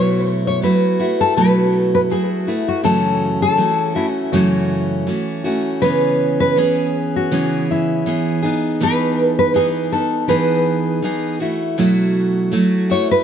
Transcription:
Already playing: B2 F#3 A3 E4 F#4 C#5
0.47 C#5
0.62 F#3 A3 E4 F#4 B4
1.00 A3 E4 F#4
1.21 A4
1.37 B2 F#3 A3 E4 F#4 B4
1.95 B4
2.10 F#3 A3 E4 F#4 G#4
2.47 A3 E4 F#4
2.68 F#4
2.83 F#2 C#3 E3 A3 C#4 F#4 A4
3.42 A4
3.57 E3 A3 C#4 F#4
3.95 E3 A3 C#4 E4 F#4
4.32 F#2 C#3 E3 A3 C#4 F#4
5.07 E3 A3 C#4 F#4
5.44 E3 A3 C#4 F#4
5.82 C#3 E3 B3 C#4 G#4 B4
6.40 B4
6.56 E3 B3 C#4 G#4
7.16 F#4
7.31 C#3 E3 B3 C#4 G#4
7.71 E4
8.06 E3 B3 C#4 G#4
8.42 B3 D#4 G#4
8.81 E3 B3 D#4 G#4 B4
9.39 B4
9.54 E3 B3 D#4 G#4
9.92 B3 D#4 A4
10.28 E3 B3 D#4 G#4 B4
11.02 E3 B3 D#4 G#4
11.40 A3 E4 F#4
11.78 B2 F#3 A3 E4 F#4
12.51 F#3 A3 E4 F#4
12.90 A3 E4 F#4 C#5
13.11 B4

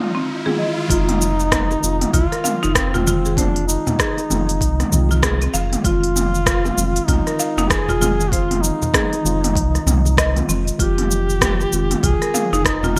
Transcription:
Already playing: D#3 G#3 C4 F4, riser
0.15 C4, shaker
0.29 open hi-hat
0.46 D#3 G#3 C4 F4 G#4, mid tom
0.59 D#5
0.78 open hi-hat, shaker
0.88 F1 D#3 G#3 C4 D#4 F4, kick, open hi-hat, shaker
1.09 mid tom, open hi-hat
1.22 shaker
1.40 shaker
1.52 kick, cross-stick, mid tom, open hi-hat, shaker
1.71 high bongo, shaker
1.80 F1 D#3 G#3 C4, shaker
1.85 F4
2.01 mid tom, open hi-hat, shaker
2.13 C2 F4, kick, open hi-hat, high conga, low conga, shaker
2.32 A#4, cross-stick, open hi-hat, shaker
2.44 F5, mid tom, shaker
2.63 F1 D#4, high bongo, shaker
2.75 C4, kick, cross-stick, open hi-hat, shaker
2.94 F4, mid tom, low conga, shaker
3.05 D#3 G#3 C4 F4, high conga, low conga, shaker
3.25 G#4, shaker
3.35 D#3 G#3 C4 D4 C5, kick, mid tom, open hi-hat, shaker
3.39 F4
3.56 open hi-hat
3.68 D#4, shaker
3.87 mid tom, low conga, shaker
3.99 G#4, kick, cross-stick, open hi-hat, shaker
4.17 open hi-hat, high bongo, shaker
4.30 F1 D#3 G#3 C4 F4, mid tom, high conga, shaker
4.49 open hi-hat, shaker
4.61 C2, kick, open hi-hat, shaker
4.80 cross-stick, mid tom, open hi-hat, shaker
4.90 C2 D#3 G#3 C4, high conga, low conga, shaker
4.94 F4
5.09 F4, high bongo, high conga, shaker
5.23 G#4, kick, cross-stick, mid tom, open hi-hat, shaker
5.42 C4, open hi-hat, shaker
5.54 F1 F5, high conga, shaker
5.73 mid tom, open hi-hat, shaker
5.82 F1 D#3 G#3 C4 F4, kick, open hi-hat, shaker
5.86 F4
6.03 open hi-hat
6.16 mid tom, shaker
6.35 shaker
6.46 kick, cross-stick, open hi-hat, shaker
6.65 mid tom, high bongo, shaker
6.75 F1 D#3 G#3 C4, shaker
6.79 F4
6.96 open hi-hat, shaker
7.08 C2 D#4 F4, kick, mid tom, open hi-hat, high conga, low conga, shaker
7.27 A#4, cross-stick, open hi-hat, shaker
7.39 F5, shaker
7.57 F1 D#4, mid tom, high bongo, shaker
7.69 G#4, kick, cross-stick, open hi-hat, shaker
7.89 F4, low conga, shaker
8.00 D#3 G#3 C4 F4, mid tom, high conga, low conga, shaker
8.20 G#4, shaker
8.30 D#3 G#3 C4 F4 C5, kick, open hi-hat, shaker
8.51 mid tom, open hi-hat
8.62 D#4, shaker
8.82 low conga, shaker
8.94 G#4, kick, cross-stick, mid tom, open hi-hat, shaker
9.12 open hi-hat, high bongo, shaker
9.24 F1 D#3 G#3 C4 F4, high conga, shaker
9.44 mid tom, open hi-hat, shaker
9.55 C2, kick, open hi-hat, shaker
9.75 cross-stick, open hi-hat, shaker
9.86 C2, mid tom, high conga, low conga, shaker
10.05 high bongo, high conga, shaker
10.17 D#5, kick, cross-stick, open hi-hat, shaker
10.35 D#3 G#3 C4 F4, mid tom, open hi-hat, shaker
10.49 F1 C4, high conga, shaker
10.67 open hi-hat, shaker
10.78 F1 D#3 F3 G#3 C4 F4 G4, kick, open hi-hat, shaker
10.98 mid tom, open hi-hat
11.11 shaker
11.30 shaker
11.41 kick, cross-stick, mid tom, open hi-hat, shaker
11.60 high bongo, shaker
11.70 F1 D#3 G#3 C4 F4, shaker
11.91 mid tom, open hi-hat, shaker
12.03 C2 F4 G#4, kick, open hi-hat, high conga, low conga, shaker
12.22 A#4, cross-stick, open hi-hat, shaker
12.34 F5, mid tom, shaker
12.52 F1 D#4, high bongo, shaker
12.65 D#4, kick, cross-stick, open hi-hat, shaker
12.83 F4, mid tom, low conga, shaker
12.96 D#3 G#3, high conga, low conga

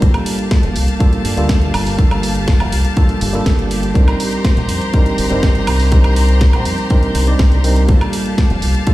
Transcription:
0.01 G1 G3 A#3 D4 F4 G4 A4 F5 A5, kick, closed hi-hat
0.14 closed hi-hat, high woodblock
0.26 open hi-hat
0.39 closed hi-hat
0.51 kick, snare, closed hi-hat
0.63 F1, closed hi-hat
0.76 C2, open hi-hat
0.88 closed hi-hat
1.00 G3 A#3 D4 F4 A4, kick, closed hi-hat
1.13 closed hi-hat
1.25 G2, open hi-hat
1.36 D2 G3 A#3 D4 F4 A4, closed hi-hat
1.49 kick, snare, closed hi-hat
1.62 closed hi-hat
1.74 G1, open hi-hat, high woodblock
1.87 open hi-hat
1.98 G3 A#3 D4 F4 A4, kick, closed hi-hat
2.11 G1, closed hi-hat, high woodblock
2.23 open hi-hat
2.35 closed hi-hat
2.48 kick, snare, closed hi-hat
2.60 F1, closed hi-hat, high woodblock
2.72 C2, open hi-hat
2.85 closed hi-hat
2.97 G3 A#3 D4 F4 A4, kick, closed hi-hat
3.09 closed hi-hat
3.21 G1, open hi-hat
3.33 G3 A#3 D4 F4 A4, closed hi-hat
3.46 G1, kick, snare, closed hi-hat
3.59 closed hi-hat
3.71 open hi-hat
3.83 closed hi-hat
3.94 C2 G3 C4 D4 D#4 A#4 C5 A#5 C6, kick, closed hi-hat
4.08 closed hi-hat, high woodblock
4.20 open hi-hat
4.32 closed hi-hat
4.45 kick, snare, closed hi-hat
4.57 A#1, closed hi-hat
4.69 F2, open hi-hat
4.81 closed hi-hat
4.93 G3 C4 D4 D#4 A#4, kick, closed hi-hat
5.06 closed hi-hat
5.18 G1, open hi-hat
5.30 G1 G3 C4 D4 D#4 A#4, closed hi-hat
5.43 kick, snare, closed hi-hat
5.55 closed hi-hat
5.67 C2, open hi-hat, high woodblock
5.80 open hi-hat
5.91 G3 C4 D4 D#4 A#4, kick, closed hi-hat
6.04 C2, closed hi-hat, high woodblock
6.16 open hi-hat
6.29 closed hi-hat
6.41 kick, snare, closed hi-hat
6.53 A#1, closed hi-hat, high woodblock
6.65 F2, open hi-hat
6.78 closed hi-hat
6.90 G3 C4 D4 D#4 A#4, kick, closed hi-hat
7.03 closed hi-hat
7.15 C2, open hi-hat
7.27 G3 C4 D4 D#4 D5, closed hi-hat
7.39 C2, kick, snare, closed hi-hat
7.52 closed hi-hat
7.64 G3 C4 D4 D#4 A#4, open hi-hat
7.76 closed hi-hat
7.88 G1 G3 A#3 D4 F4 A4 F5 A5, kick, closed hi-hat
8.01 closed hi-hat, high woodblock
8.13 open hi-hat
8.26 closed hi-hat
8.38 kick, snare, closed hi-hat
8.50 F1, closed hi-hat
8.62 C2, open hi-hat
8.75 closed hi-hat
8.86 G3 A#3 D4 F4 A4, kick, closed hi-hat

